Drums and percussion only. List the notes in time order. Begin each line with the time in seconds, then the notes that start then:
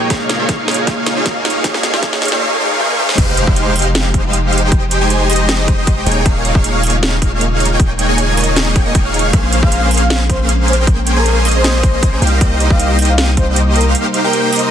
0.10 kick, snare, closed hi-hat
0.29 snare, closed hi-hat
0.49 kick, snare, closed hi-hat
0.68 snare, closed hi-hat
0.71 closed hi-hat
0.74 closed hi-hat
0.87 kick, snare, closed hi-hat
1.06 snare, closed hi-hat
1.26 kick, snare, closed hi-hat
1.45 snare, closed hi-hat
1.50 closed hi-hat
1.64 kick, snare, closed hi-hat
1.74 snare
1.83 snare, closed hi-hat
1.94 snare
2.03 kick, snare, closed hi-hat
2.13 snare
2.22 snare, closed hi-hat
2.25 closed hi-hat
2.28 snare, closed hi-hat
2.90 high tom
2.99 mid tom
3.09 snare
3.18 kick, closed hi-hat, crash
3.37 closed hi-hat
3.47 kick
3.56 closed hi-hat
3.76 closed hi-hat, open hi-hat
3.82 closed hi-hat
3.95 snare, closed hi-hat
4.14 kick, closed hi-hat
4.33 closed hi-hat
4.53 closed hi-hat
4.58 closed hi-hat
4.72 kick, closed hi-hat
4.91 closed hi-hat
5.10 closed hi-hat
5.30 closed hi-hat, open hi-hat
5.36 closed hi-hat
5.49 snare, closed hi-hat
5.68 kick, closed hi-hat
5.87 kick, closed hi-hat
6.06 closed hi-hat
6.12 closed hi-hat
6.26 kick, closed hi-hat
6.45 closed hi-hat
6.55 kick
6.64 closed hi-hat
6.83 closed hi-hat, open hi-hat
6.90 closed hi-hat
7.03 snare, closed hi-hat
7.22 kick, closed hi-hat
7.41 closed hi-hat
7.60 closed hi-hat
7.65 closed hi-hat
7.80 kick, closed hi-hat
7.99 closed hi-hat
8.18 closed hi-hat
8.37 closed hi-hat, open hi-hat
8.44 closed hi-hat
8.56 snare, closed hi-hat
8.76 kick, closed hi-hat
8.95 kick, closed hi-hat
9.14 closed hi-hat
9.19 closed hi-hat
9.33 kick, closed hi-hat
9.53 closed hi-hat
9.63 kick
9.72 closed hi-hat
9.91 closed hi-hat, open hi-hat
9.97 closed hi-hat
10.10 snare, closed hi-hat
10.30 kick, closed hi-hat
10.49 closed hi-hat
10.68 closed hi-hat
10.73 closed hi-hat
10.87 kick, closed hi-hat
11.07 closed hi-hat
11.26 closed hi-hat
11.45 closed hi-hat, open hi-hat
11.51 closed hi-hat
11.64 snare, closed hi-hat
11.83 kick, closed hi-hat
12.03 kick, closed hi-hat
12.22 closed hi-hat
12.27 closed hi-hat
12.41 kick, closed hi-hat
12.60 closed hi-hat
12.70 kick
12.80 closed hi-hat
12.99 closed hi-hat, open hi-hat
13.05 closed hi-hat
13.18 snare, closed hi-hat
13.37 kick, closed hi-hat
13.56 closed hi-hat
13.76 closed hi-hat
13.81 closed hi-hat
13.95 closed hi-hat
14.14 closed hi-hat
14.33 closed hi-hat
14.53 closed hi-hat, open hi-hat
14.59 closed hi-hat